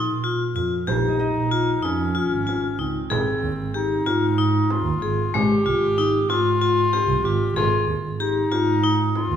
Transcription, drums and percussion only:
0.88 frame drum
1.85 frame drum
2.49 frame drum
2.80 frame drum
3.11 frame drum
3.43 frame drum
4.07 frame drum
4.70 frame drum
5.02 frame drum
5.35 frame drum
5.66 frame drum
6.30 frame drum
6.93 frame drum
7.25 frame drum
7.57 frame drum
7.89 frame drum
8.52 frame drum
9.15 frame drum

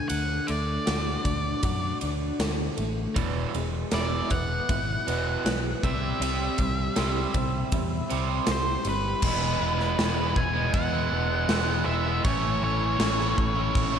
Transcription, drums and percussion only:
0.10 ride
0.48 ride
0.87 snare, ride
1.25 kick, ride
1.63 kick, ride
2.01 ride
2.40 snare, ride
2.77 ride
3.16 kick, ride
3.54 ride
3.91 snare, ride
4.30 kick, ride
4.69 kick, ride
5.08 ride
5.46 snare, ride
5.83 kick, ride
6.22 ride
6.58 kick, ride
6.96 snare, ride
7.34 kick, ride
7.72 kick, ride
8.10 ride
8.47 snare, ride
8.85 ride
9.22 kick, crash
9.80 snare
9.99 snare, crash
10.36 kick
10.74 kick, crash
11.49 snare, crash
12.24 kick, crash
13.00 snare, crash
13.20 snare
13.38 kick
13.75 kick, crash

